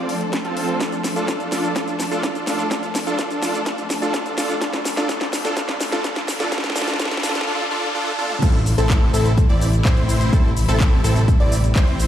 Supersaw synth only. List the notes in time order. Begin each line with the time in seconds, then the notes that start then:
Already playing: C4 F4 D5
0.45 C4 F4 A4
0.81 D4 F4 A4
1.16 D4 F4 A4
1.52 D4 F4 A4
1.76 D4 F4 A4
2.11 D4 F4 A4
2.47 D4 F4 A4
2.71 D4 F4 A4
3.07 D4 F4 A4
3.42 D4 F4 A4
3.66 D4 F4 A4
4.02 D4 F4 A4
4.38 D4 F4 A4
4.61 D4 F4 A4
4.97 D4 F4 A4
5.09 D4 F4 A4
5.45 D4 F4 A4
5.57 D4 F4 A4
5.92 D4 F4 A4
6.04 D4 F4 A4
6.40 D4 F4 A4
6.52 D4 F4 A4
6.76 D4 F4 A4
6.99 D4 F4 A4
7.23 D4 F4 A4
7.47 D4 F4 A4
7.71 D4 F4 A4
7.95 D4 F4 A4
8.19 D4 F4 A4
8.42 C4 E4 A4
8.78 C4 E4 A4
9.14 C4 E4 A4
9.50 C4 E4 D5
9.85 C4 E4 C5
10.33 C4 E4 A4
10.68 C4 E4 A4
11.04 C4 E4 A4
11.40 C4 E4 D5
11.76 C4 E4 C5